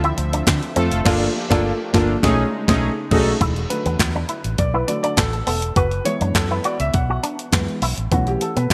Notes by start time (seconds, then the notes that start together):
Already playing: D2 D3 F3 C4 E4 F4 A4 E5
0.04 E4, closed hi-hat
0.18 D2, muted clean electric guitar stroke, closed hi-hat
0.33 D4, closed hi-hat
0.47 D3, kick, snare, clap, closed hi-hat
0.63 closed hi-hat
0.76 F2 A3 C4 F4 A4, closed hi-hat
0.92 F1, closed hi-hat
1.05 G1 A3 A#3 D4 F4 G4 A4, kick, snare, crash
1.50 G1 A#3 D4 F4 A4, kick, snare
1.93 G1 A#3 D4 F4 A4, kick, snare
2.22 B1 C#3 G#3 A3 C#4 D#4 G#4, kick, snare
2.68 B1 A3 C#4 D#4 G#4, kick, snare
3.11 B1 A3 C#4 D#4 F#4 G#4 A4, kick, crash
3.41 E1 E4, kick, closed hi-hat
3.56 closed hi-hat
3.69 D3 F#3 A3 B4, muted clean electric guitar stroke, closed hi-hat
3.86 E2 B3, closed hi-hat
3.99 E2, muted clean electric guitar stroke, kick, snare, clap, closed hi-hat
4.15 D4
4.29 E4, closed hi-hat
4.44 A1, closed hi-hat
4.58 B1 D5, kick, closed hi-hat
4.74 E4 B4
4.87 D3 F#3 A3 D5, muted clean electric guitar stroke, closed hi-hat
5.03 D4 D5, closed hi-hat
5.17 A1 A4, kick, snare, clap, closed hi-hat
5.33 A4, closed hi-hat
5.47 E1 B3 A4, open hi-hat
5.62 closed hi-hat
5.76 F#1 F#4 B4, kick, closed hi-hat
5.91 closed hi-hat
6.05 E3 G#3 B3 C#5, muted clean electric guitar stroke, closed hi-hat
6.21 F#2 D4, closed hi-hat
6.35 F#2 A4, muted clean electric guitar stroke, kick, snare, clap, closed hi-hat
6.51 E4 B4
6.64 F#4 D5, closed hi-hat
6.80 C#2 E5, closed hi-hat
6.94 B1 F#5, muted clean electric guitar stroke, kick, closed hi-hat
7.10 F#4
7.23 D4, closed hi-hat
7.39 closed hi-hat
7.52 F#2 E3 G#3 B3, kick, snare, clap, closed hi-hat
7.68 closed hi-hat
7.82 B1 E4, open hi-hat
7.98 A1, closed hi-hat
8.11 B1 E3 A3 B3 C#4 F#4, kick, closed hi-hat
8.27 G4, closed hi-hat
8.41 A4, muted clean electric guitar stroke, closed hi-hat
8.56 B2 B3 B4, closed hi-hat
8.70 B2, kick, closed hi-hat